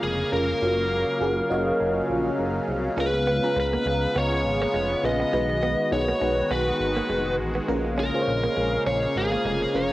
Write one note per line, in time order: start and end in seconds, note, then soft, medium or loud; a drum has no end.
0.00 0.24 F1 medium
0.00 0.60 C#3 medium
0.00 0.59 G#3 medium
0.00 2.94 A#3 medium
0.00 0.32 C#4 medium
0.00 0.33 F4 medium
0.00 0.33 G#4 medium
0.00 0.33 A#4 medium
0.00 5.29 F5 medium
0.32 0.54 F1 medium
0.32 0.56 C#4 medium
0.32 0.56 F4 medium
0.32 0.56 G#4 medium
0.32 0.56 A#4 medium
0.32 2.06 A#4 medium
0.62 1.05 F#1 loud
0.62 5.29 C#3 medium
0.62 2.95 F#3 medium
0.62 1.08 C#4 medium
0.62 1.08 F4 medium
0.62 1.09 F#4 medium
0.62 1.09 A#4 medium
1.20 1.42 F#1 loud
1.20 1.44 C#4 medium
1.20 1.44 F4 medium
1.20 1.44 F#4 medium
1.20 1.45 G#4 medium
1.50 1.72 F#1 loud
1.50 2.40 C#4 medium
1.50 2.40 F4 medium
1.50 2.40 F#4 medium
1.50 2.40 C#5 medium
1.50 1.66 D#5 medium
1.67 1.79 F5 medium
1.80 2.02 F#1 medium
1.80 2.35 G#5 medium
2.10 2.31 A#1 medium
2.39 2.60 F#1 medium
2.39 2.94 A#5 medium
2.68 2.89 C2 medium
2.97 3.40 C#2 loud
2.97 5.31 G#3 medium
2.97 7.64 B3 medium
2.97 3.31 C#4 medium
2.97 3.10 C#4 medium
2.97 3.31 F4 medium
2.97 3.32 G#4 medium
2.97 3.32 B4 medium
2.97 3.59 B4 medium
3.14 muted clean electric guitar stroke soft
3.27 3.39 B3 medium
3.43 4.32 C#4 medium
3.43 4.32 F4 medium
3.43 4.33 G#4 medium
3.43 4.33 A#5 medium
3.56 3.77 C#2 loud
3.56 4.19 B4 medium
3.56 muted clean electric guitar stroke soft
3.73 3.83 A#3 medium
3.86 4.07 C#2 loud
3.86 3.98 G#3 medium
4.15 4.46 C#2 medium
4.15 4.27 B3 medium
4.15 4.61 C#5 medium
4.32 muted clean electric guitar stroke soft
4.45 4.66 G#1 medium
4.62 4.71 A#3 medium
4.62 5.05 C#5 medium
4.74 4.95 F1 medium
4.74 4.86 G#3 medium
4.91 muted clean electric guitar stroke soft
5.03 5.25 A#1 medium
5.03 5.27 C#4 medium
5.03 5.27 F4 medium
5.03 5.27 G#4 medium
5.03 5.27 B4 medium
5.03 5.92 D#5 loud
5.20 5.29 B3 medium
5.32 5.75 B1 loud
5.32 7.66 D#3 medium
5.32 9.93 G#3 medium
5.32 5.45 G#3 medium
5.32 5.79 D#4 medium
5.32 5.79 F#4 medium
5.32 7.66 F#4 medium
5.32 5.79 G#4 medium
5.32 5.79 B4 medium
5.50 muted clean electric guitar stroke soft
5.63 5.74 B3 medium
5.92 6.13 B1 loud
5.92 6.15 D#4 medium
5.92 6.15 F#4 medium
5.92 6.15 G#4 medium
5.92 6.15 B4 medium
5.92 6.53 C#5 medium
5.92 muted clean electric guitar stroke soft
6.08 6.18 A#3 medium
6.20 6.42 B1 medium
6.20 6.33 G#3 medium
6.20 7.10 D#4 medium
6.20 7.10 F#4 medium
6.20 7.11 G#4 medium
6.20 7.11 B4 medium
6.51 6.72 B1 loud
6.51 6.62 B3 medium
6.51 7.35 B4 medium
6.67 muted clean electric guitar stroke soft
6.80 7.01 G#1 medium
6.96 7.06 A#3 medium
7.09 7.41 F1 medium
7.09 7.21 G#3 medium
7.26 muted clean electric guitar stroke soft
7.39 7.60 A1 medium
7.55 7.65 B3 medium
7.68 8.11 A#1 loud
7.68 9.93 C#3 medium
7.68 9.93 A#3 medium
7.68 7.80 A#3 medium
7.68 8.02 C#4 medium
7.68 8.02 F4 medium
7.68 8.02 G#4 medium
7.68 8.03 A#4 medium
7.68 9.93 F5 medium
7.84 muted clean electric guitar stroke soft
7.98 8.09 C#4 medium
7.98 8.83 A#4 medium
8.14 9.03 C#4 medium
8.14 9.03 F4 medium
8.14 9.03 G#4 medium
8.14 8.20 C5 medium
8.22 9.07 C#5 medium
8.27 8.48 A#1 medium
8.27 muted clean electric guitar stroke soft
8.44 8.53 A#3 medium
8.57 8.78 A#1 medium
8.57 8.68 G#3 medium
8.86 9.07 A#1 medium
8.86 8.98 C#4 medium
8.86 9.17 C#5 loud
9.03 muted clean electric guitar stroke soft
9.16 9.37 G#1 medium
9.16 9.77 G#4 medium
9.32 9.41 A#3 medium
9.45 9.66 F1 medium
9.45 9.57 G#3 medium
9.62 muted clean electric guitar stroke soft
9.74 9.93 F1 medium
9.74 9.93 C#4 medium
9.74 9.93 F4 medium
9.74 9.93 G#4 medium
9.74 9.93 A#4 medium
9.74 9.93 C#5 medium